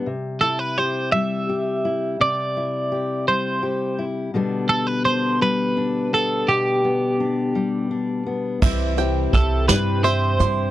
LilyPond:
<<
  \new Staff \with { instrumentName = "Five-string banjo" } { \time 6/8 \key c \lydian \tempo 4. = 56 r2. | r2. | r2. | r2. |
e''8 g''8 e''4 e''8 c'''8 | }
  \new Staff \with { instrumentName = "Clean electric guitar" } { \time 6/8 \key c \lydian r8 a'16 b'16 c''8 e''4. | d''4. c''4 r8 | r8 a'16 b'16 c''8 b'4 a'8 | g'2~ g'8 r8 |
r4 a'8 b'8 c''4 | }
  \new Staff \with { instrumentName = "Steel-string acoustic guitar" } { \time 6/8 \key c \lydian r2. | r2. | r2. | r2. |
<c g c' e' g' c''>8 <c' e' g' c''>8 <c' e' g' c''>8 <c g c' e' g'>8 <c' e' g' c''>8 <c' e' g' c''>8 | }
  \new Staff \with { instrumentName = "Steel-string acoustic guitar" } { \time 6/8 \key c \lydian << { g8 e'8 g'8 g8 g'8 e'8 | r8 e'8 g'8 g8 g'8 e'8 | <d g b d'>4 d'8 g8 d'8 b8~ | b8 b8 d'8 g8 d'8 b8 |
<e g e' g'>8 e'8 g'8 g8 g'8 e'8 | } \\ { c2. | c2. | b,2. | b,2. |
c2. | } >> }
  \new Staff \with { instrumentName = "Upright bass" } { \clef bass \time 6/8 \key c \lydian r2. | r2. | r2. | r2. |
c,4 c,8 g,4 g,8 | }
  \new DrumStaff \with { instrumentName = "Drums" } \drummode { \time 6/8 r4. r4. | r4. r4. | r4. r4. | r4. r4. |
<cymc bd>8 hh8 <hh bd>8 <hh sn>8 hh8 hh8 | }
>>